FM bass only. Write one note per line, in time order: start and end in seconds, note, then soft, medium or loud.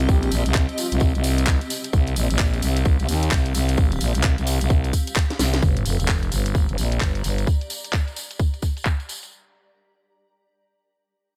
0.00 0.30 C2 loud
0.32 0.44 A#1 medium
0.46 0.67 C2 loud
0.92 1.13 C2 loud
1.15 1.59 C2 loud
1.93 2.15 C2 loud
2.16 2.28 A#1 medium
2.31 2.61 A#1 loud
2.62 2.97 C2 loud
3.00 3.07 C2 loud
3.09 3.30 D#2 loud
3.32 3.53 C2 medium
3.55 4.00 C2 loud
4.01 4.13 A#1 loud
4.15 4.36 C2 loud
4.38 4.59 C2 loud
4.61 4.92 C2 loud
5.39 5.61 C2 loud
5.63 5.84 G1 medium
5.86 5.98 F1 medium
6.00 6.30 F1 medium
6.32 6.67 G1 loud
6.69 6.77 G1 loud
6.78 7.00 A#1 medium
7.01 7.23 G1 medium
7.24 7.46 G1 loud